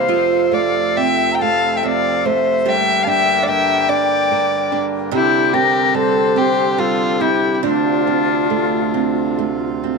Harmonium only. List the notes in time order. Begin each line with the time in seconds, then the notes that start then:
Already playing: C3
0.09 F2 A3
2.67 G2 D3 A#3
5.12 G3 C4
7.61 D2 C3 F4